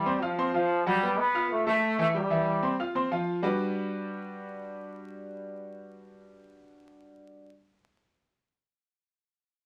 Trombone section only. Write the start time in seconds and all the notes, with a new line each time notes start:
Already playing: G3
0.22 F3
0.54 F3
0.86 G3
1.18 B3
1.51 A3
1.67 A3
1.99 A3
2.15 G3